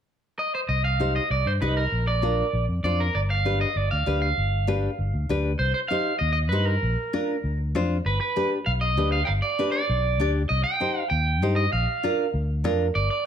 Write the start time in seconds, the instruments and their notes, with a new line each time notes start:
0.39 clean electric guitar D#5
0.55 clean electric guitar C5
0.68 fingered electric bass C2, clean electric guitar D#5
0.84 clean electric guitar F5
1.00 nylon-string guitar D#4 G4 C5
1.16 clean electric guitar D#5
1.30 fingered electric bass C2, clean electric guitar D5
1.45 fingered electric bass G2, clean electric guitar C5
1.61 fingered electric bass C2, nylon-string guitar D#4 G4 D#5, clean electric guitar B4
1.77 clean electric guitar A#4
1.92 fingered electric bass A#1
2.07 clean electric guitar D5
2.22 nylon-string guitar D4 F4 A#4
2.53 fingered electric bass A#1
2.69 fingered electric bass F2
2.83 fingered electric bass F2, nylon-string guitar D4 F4 C5, clean electric guitar D5
3.00 clean electric guitar A#4
3.15 fingered electric bass G1, clean electric guitar D5
3.30 clean electric guitar F5
3.45 nylon-string guitar D4 G4 B4
3.61 clean electric guitar D#5
3.75 fingered electric bass G1, clean electric guitar D5
3.91 fingered electric bass D2, clean electric guitar F5
4.06 fingered electric bass D2, nylon-string guitar D4 G4 B4
4.22 clean electric guitar F5
4.37 fingered electric bass G1
4.67 nylon-string guitar D4 G4 B4
4.98 fingered electric bass G1
5.14 fingered electric bass D2
5.29 fingered electric bass D2, nylon-string guitar D4 G4 B4
5.59 fingered electric bass C2, clean electric guitar C5
5.74 clean electric guitar C5
5.88 nylon-string guitar D#4 G4 C5, clean electric guitar F5
6.19 fingered electric bass D#2, clean electric guitar D#5
6.33 clean electric guitar D#5
6.49 fingered electric bass G2, nylon-string guitar D#4 G4 C5, clean electric guitar B4
6.65 clean electric guitar A#4
6.82 fingered electric bass A#1
7.13 nylon-string guitar D4 F4 A#4
7.44 fingered electric bass D2
7.75 fingered electric bass F2, nylon-string guitar D4 F4 C5
8.05 fingered electric bass G1, clean electric guitar B4
8.21 clean electric guitar B4
8.36 nylon-string guitar D4 G4 B4
8.66 fingered electric bass B1, clean electric guitar F5
8.81 clean electric guitar D#5
8.97 fingered electric bass D2, nylon-string guitar D4 G4 B4
9.12 clean electric guitar F5
9.25 fingered electric bass G1, clean electric guitar F5 G5
9.42 clean electric guitar D5
9.59 nylon-string guitar D4 G4 B4
9.72 clean electric guitar D5
9.89 fingered electric bass B1
10.19 fingered electric bass D2, nylon-string guitar D4 G4 D5
10.49 fingered electric bass C2, clean electric guitar D#5
10.64 clean electric guitar G5
10.80 nylon-string guitar D#4 G4 C5
11.10 fingered electric bass D#2, clean electric guitar G5
11.41 fingered electric bass G2, nylon-string guitar D#4 G4 C5
11.56 clean electric guitar D#5
11.73 fingered electric bass A#1, clean electric guitar F5
12.03 nylon-string guitar D4 F4 A#4
12.34 fingered electric bass D2
12.64 fingered electric bass F2, nylon-string guitar D4 F4 A#4
12.95 fingered electric bass G1, clean electric guitar D5
13.10 clean electric guitar D5